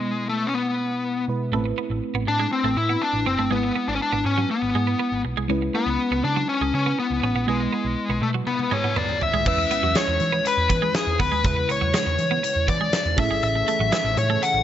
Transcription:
Already playing: B2 G#3 B3 E4 B4
0.29 A3
0.47 C#4
0.54 B3
1.28 B2 G#3 B3 E4 B4
1.52 A1 A3 C4 E4 B4
1.66 muted clean electric guitar stroke
1.78 B3
1.90 A1
2.14 A1 B3
2.27 A2 D4, muted clean electric guitar stroke
2.40 G#3
2.52 C4
2.64 A1 A3
2.76 A2 E4, muted clean electric guitar stroke
2.89 B3
3.01 D4, muted clean electric guitar stroke
3.13 A1
3.26 F#1 C4
3.38 G1 A3
3.50 G#1 G#3 B3 E4 B4
3.63 muted clean electric guitar stroke
3.76 B3
3.88 G#1 D4
3.95 C#4
4.02 D4
4.13 G#1 B3
4.25 G#2 C#4, muted clean electric guitar stroke
4.38 F#3
4.50 B3, muted clean electric guitar stroke
4.62 G#1
4.75 G#2 G#3
4.87 B3
4.99 B3
5.12 G#1
5.24 B1, muted clean electric guitar stroke
5.37 C2 G#3
5.48 C#2 G#3 C#4 E4 B4
5.62 muted clean electric guitar stroke
5.75 B3
5.87 C#2
6.11 C#2 B3
6.24 C#3 D4, muted clean electric guitar stroke
6.36 F#3
6.49 C#4
6.61 C#2 G#3
6.74 C#3 C#4, muted clean electric guitar stroke
6.86 B3
6.99 B3, muted clean electric guitar stroke
7.10 C#2
7.23 A1 C#4
7.35 A#1 B3
7.47 B1 G#3 B3 E4 B4
7.60 muted clean electric guitar stroke
7.73 B3
7.85 B1
8.09 B1 B3
8.22 B2 A3, muted clean electric guitar stroke
8.34 F#3
8.47 B3, muted clean electric guitar stroke, high tom
8.59 high tom
8.71 G#3 C#5, mid tom
8.84 B3, mid tom
8.96 B3 D5, mid tom
9.09 mid tom
9.21 E5, muted clean electric guitar stroke, floor tom
9.34 G#3, floor tom
9.45 E2 G#3 C#4 E4 B4 E5, kick, crash
9.58 muted clean electric guitar stroke
9.71 B3, closed hi-hat
9.83 E2 F#3
9.95 G#3 C#5, snare, closed hi-hat
10.08 E2, muted clean electric guitar stroke
10.20 E3, closed hi-hat
10.32 B3
10.45 B4, muted clean electric guitar stroke, closed hi-hat
10.57 E2
10.69 E3 B3, kick, closed hi-hat
10.82 G#3
10.95 G#4, muted clean electric guitar stroke, snare, closed hi-hat
11.07 E2
11.20 D2 B3 B4, kick, open hi-hat
11.32 D#2 G#3
11.44 E2 C#3 G#3 E4 B4, kick, closed hi-hat
11.57 muted clean electric guitar stroke
11.69 B3 C#5, closed hi-hat
11.81 E2 F#3
11.94 G#3 C#5, snare, closed hi-hat
12.07 E2, muted clean electric guitar stroke
12.19 E3, closed hi-hat
12.31 B3
12.43 muted clean electric guitar stroke, closed hi-hat
12.56 E2
12.68 E3 B3 D5, kick, closed hi-hat
12.81 G#3
12.93 muted clean electric guitar stroke, snare, closed hi-hat
13.06 E2
13.17 A1 A3 C#4 E4 G#4 A4 E5, kick, open hi-hat
13.30 G#1 G#3
13.42 A1 C#3 E3 A3 E5, closed hi-hat
13.55 muted clean electric guitar stroke
13.68 A3, closed hi-hat
13.80 A1 F#3
13.92 G#3 E5, snare, closed hi-hat
14.05 A1, muted clean electric guitar stroke
14.17 A2 C#5, closed hi-hat
14.30 A3
14.42 F#5, muted clean electric guitar stroke, closed hi-hat
14.54 A1

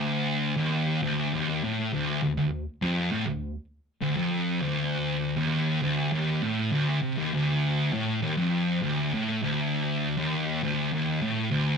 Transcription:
Already playing: D2
0.57 D#2
1.03 D2
1.33 D#2
1.63 A2
1.93 D2
2.22 D2
2.38 D2
2.82 F2
3.12 A2
3.26 D2
4.01 D2
4.16 F2
4.62 D2
5.37 D#2
5.82 D2
6.12 D#2
6.43 A2
6.71 D2
7.02 C3
7.18 D#2
7.34 D2
7.93 A2
8.22 D#2
8.37 F2
8.82 D2
9.14 A2
9.43 D2
10.18 D#2
10.64 D2
10.93 D#2
11.22 A2
11.51 D2

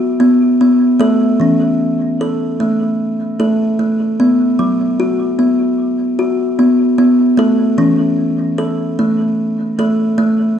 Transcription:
Already playing: F#4
0.20 B3
0.61 B3
1.00 A3 A4
1.40 E3 C#4
2.21 A4
2.60 A3
3.40 A3 A4
3.79 A3
4.20 B3
4.59 F#3
5.00 F#4
5.39 B3
6.19 F#4
6.59 B3
6.98 B3
7.37 A3 A4
7.78 E3 C#4
8.58 A4
8.99 A3
9.79 A3 A4
10.18 A3

